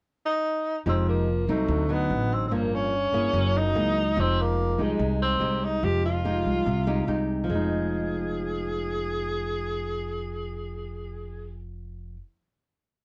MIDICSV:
0, 0, Header, 1, 4, 480
1, 0, Start_track
1, 0, Key_signature, -4, "minor"
1, 0, Tempo, 414938
1, 994, Time_signature, 4, 2, 24, 8
1, 15090, End_track
2, 0, Start_track
2, 0, Title_t, "Tenor saxophone"
2, 0, Program_c, 0, 66
2, 297, Note_on_c, 0, 63, 89
2, 958, Note_off_c, 0, 63, 0
2, 1025, Note_on_c, 0, 60, 80
2, 1233, Note_off_c, 0, 60, 0
2, 1257, Note_on_c, 0, 58, 72
2, 1745, Note_on_c, 0, 57, 81
2, 1763, Note_off_c, 0, 58, 0
2, 2225, Note_on_c, 0, 59, 90
2, 2243, Note_off_c, 0, 57, 0
2, 2703, Note_on_c, 0, 60, 78
2, 2721, Note_off_c, 0, 59, 0
2, 2860, Note_off_c, 0, 60, 0
2, 2867, Note_on_c, 0, 60, 59
2, 2937, Note_on_c, 0, 58, 90
2, 2955, Note_off_c, 0, 60, 0
2, 3184, Note_on_c, 0, 61, 89
2, 3202, Note_off_c, 0, 58, 0
2, 4131, Note_on_c, 0, 63, 104
2, 4149, Note_off_c, 0, 61, 0
2, 4861, Note_on_c, 0, 60, 94
2, 4879, Note_off_c, 0, 63, 0
2, 5104, Note_on_c, 0, 58, 87
2, 5121, Note_off_c, 0, 60, 0
2, 5581, Note_on_c, 0, 56, 86
2, 5599, Note_off_c, 0, 58, 0
2, 6034, Note_off_c, 0, 56, 0
2, 6041, Note_on_c, 0, 60, 100
2, 6530, Note_on_c, 0, 63, 90
2, 6548, Note_off_c, 0, 60, 0
2, 6756, Note_on_c, 0, 67, 95
2, 6774, Note_off_c, 0, 63, 0
2, 6993, Note_off_c, 0, 67, 0
2, 7005, Note_on_c, 0, 65, 88
2, 8395, Note_off_c, 0, 65, 0
2, 8680, Note_on_c, 0, 68, 74
2, 13401, Note_off_c, 0, 68, 0
2, 15090, End_track
3, 0, Start_track
3, 0, Title_t, "Nylon-string guitar"
3, 0, Program_c, 1, 24
3, 990, Note_on_c, 1, 53, 53
3, 993, Note_on_c, 1, 56, 52
3, 999, Note_on_c, 1, 63, 54
3, 1003, Note_on_c, 1, 67, 54
3, 1468, Note_off_c, 1, 56, 0
3, 1472, Note_off_c, 1, 63, 0
3, 1472, Note_off_c, 1, 67, 0
3, 1715, Note_off_c, 1, 53, 0
3, 1720, Note_on_c, 1, 54, 54
3, 1725, Note_on_c, 1, 60, 63
3, 1726, Note_on_c, 1, 63, 62
3, 1965, Note_on_c, 1, 50, 47
3, 2156, Note_off_c, 1, 54, 0
3, 2158, Note_off_c, 1, 60, 0
3, 2159, Note_off_c, 1, 63, 0
3, 2186, Note_on_c, 1, 54, 47
3, 2196, Note_on_c, 1, 63, 53
3, 2867, Note_off_c, 1, 54, 0
3, 2873, Note_off_c, 1, 63, 0
3, 2891, Note_off_c, 1, 50, 0
3, 2905, Note_on_c, 1, 43, 49
3, 2908, Note_on_c, 1, 53, 52
3, 2912, Note_on_c, 1, 61, 57
3, 2913, Note_on_c, 1, 58, 45
3, 3384, Note_off_c, 1, 53, 0
3, 3385, Note_off_c, 1, 58, 0
3, 3386, Note_off_c, 1, 61, 0
3, 3623, Note_on_c, 1, 58, 48
3, 3630, Note_on_c, 1, 64, 54
3, 3633, Note_on_c, 1, 68, 61
3, 3841, Note_off_c, 1, 43, 0
3, 3864, Note_on_c, 1, 54, 50
3, 4306, Note_off_c, 1, 58, 0
3, 4308, Note_off_c, 1, 64, 0
3, 4311, Note_off_c, 1, 68, 0
3, 4333, Note_on_c, 1, 58, 47
3, 4340, Note_on_c, 1, 64, 44
3, 4346, Note_on_c, 1, 68, 47
3, 4648, Note_off_c, 1, 58, 0
3, 4652, Note_off_c, 1, 64, 0
3, 4655, Note_off_c, 1, 68, 0
3, 4801, Note_off_c, 1, 54, 0
3, 4816, Note_on_c, 1, 56, 46
3, 4817, Note_on_c, 1, 53, 48
3, 4821, Note_on_c, 1, 63, 50
3, 4826, Note_on_c, 1, 67, 55
3, 5503, Note_off_c, 1, 56, 0
3, 5505, Note_off_c, 1, 63, 0
3, 5508, Note_off_c, 1, 67, 0
3, 5534, Note_on_c, 1, 56, 59
3, 5540, Note_on_c, 1, 63, 66
3, 5545, Note_on_c, 1, 67, 56
3, 5759, Note_off_c, 1, 53, 0
3, 5770, Note_on_c, 1, 48, 49
3, 6223, Note_off_c, 1, 56, 0
3, 6226, Note_off_c, 1, 63, 0
3, 6229, Note_off_c, 1, 67, 0
3, 6242, Note_on_c, 1, 56, 42
3, 6250, Note_on_c, 1, 63, 46
3, 6257, Note_on_c, 1, 67, 47
3, 6717, Note_off_c, 1, 48, 0
3, 6745, Note_on_c, 1, 53, 49
3, 7179, Note_off_c, 1, 56, 0
3, 7183, Note_off_c, 1, 63, 0
3, 7186, Note_off_c, 1, 67, 0
3, 7226, Note_on_c, 1, 56, 51
3, 7234, Note_on_c, 1, 67, 55
3, 7235, Note_on_c, 1, 63, 46
3, 7686, Note_off_c, 1, 53, 0
3, 7698, Note_on_c, 1, 48, 46
3, 7708, Note_off_c, 1, 56, 0
3, 7710, Note_off_c, 1, 63, 0
3, 7711, Note_off_c, 1, 67, 0
3, 7944, Note_on_c, 1, 56, 53
3, 7949, Note_on_c, 1, 67, 62
3, 7950, Note_on_c, 1, 63, 48
3, 8151, Note_off_c, 1, 56, 0
3, 8153, Note_off_c, 1, 63, 0
3, 8153, Note_off_c, 1, 67, 0
3, 8177, Note_on_c, 1, 56, 42
3, 8186, Note_on_c, 1, 63, 47
3, 8189, Note_on_c, 1, 67, 59
3, 8602, Note_on_c, 1, 53, 58
3, 8629, Note_off_c, 1, 56, 0
3, 8631, Note_off_c, 1, 63, 0
3, 8631, Note_off_c, 1, 67, 0
3, 8644, Note_off_c, 1, 48, 0
3, 8669, Note_on_c, 1, 56, 63
3, 8727, Note_on_c, 1, 63, 59
3, 14069, Note_off_c, 1, 53, 0
3, 14137, Note_off_c, 1, 56, 0
3, 14194, Note_off_c, 1, 63, 0
3, 15090, End_track
4, 0, Start_track
4, 0, Title_t, "Upright bass"
4, 0, Program_c, 2, 32
4, 991, Note_on_c, 2, 29, 92
4, 1664, Note_off_c, 2, 29, 0
4, 1705, Note_on_c, 2, 36, 70
4, 1930, Note_off_c, 2, 36, 0
4, 1947, Note_on_c, 2, 38, 101
4, 2394, Note_off_c, 2, 38, 0
4, 2429, Note_on_c, 2, 33, 93
4, 2905, Note_off_c, 2, 33, 0
4, 2905, Note_on_c, 2, 31, 92
4, 3579, Note_off_c, 2, 31, 0
4, 3618, Note_on_c, 2, 31, 73
4, 3845, Note_off_c, 2, 31, 0
4, 3854, Note_on_c, 2, 30, 97
4, 4306, Note_off_c, 2, 30, 0
4, 4341, Note_on_c, 2, 37, 96
4, 4822, Note_on_c, 2, 29, 85
4, 4839, Note_off_c, 2, 37, 0
4, 5498, Note_off_c, 2, 29, 0
4, 5545, Note_on_c, 2, 36, 76
4, 5769, Note_off_c, 2, 36, 0
4, 5777, Note_on_c, 2, 36, 98
4, 6229, Note_off_c, 2, 36, 0
4, 6263, Note_on_c, 2, 36, 79
4, 6743, Note_on_c, 2, 29, 94
4, 6760, Note_off_c, 2, 36, 0
4, 7422, Note_off_c, 2, 29, 0
4, 7467, Note_on_c, 2, 36, 74
4, 7693, Note_off_c, 2, 36, 0
4, 7707, Note_on_c, 2, 36, 95
4, 8157, Note_off_c, 2, 36, 0
4, 8184, Note_on_c, 2, 36, 79
4, 8636, Note_off_c, 2, 36, 0
4, 8668, Note_on_c, 2, 29, 82
4, 14090, Note_off_c, 2, 29, 0
4, 15090, End_track
0, 0, End_of_file